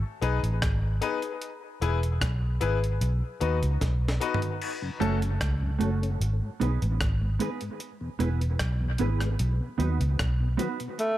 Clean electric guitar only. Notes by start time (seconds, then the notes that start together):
5.00 A3 C#4 F#4 A4
5.79 A3 C#4 F#4 A4
6.60 B3 D#4 G#4 B4
7.39 B3 D#4 G#4 B4
8.19 B3 E4 G#4 B4
8.99 B3 E4 G#4 B4
9.78 B3 D#4 F#4 B4
10.57 B3 D#4 F#4 B4